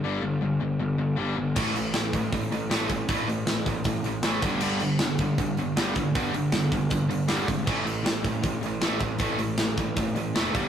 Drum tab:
CC |--------|x-------|--------|x-------|
HH |--------|-ooooooo|oooooooo|-ooooooo|
SD |--------|--o---o-|--o---o-|--o---o-|
BD |--------|o--oo--o|o--oo--o|---oo--o|

CC |--------|x-------|--------|
HH |oooooooo|-ooooooo|oooooooo|
SD |--o---o-|--o---o-|--o---o-|
BD |o--oo--o|o--oo--o|o--oo--o|